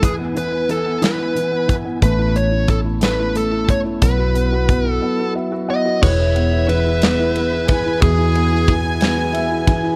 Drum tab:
CC |------|------|------|x-----|
RD |------|------|------|-xxxxx|
HH |xxxxxx|xxxxxx|xxx---|------|
SD |---o--|---o--|------|---o--|
BD |o----o|o-o--o|o-o---|o----o|

CC |------|
RD |xxxxxx|
HH |------|
SD |---o--|
BD |o-o--o|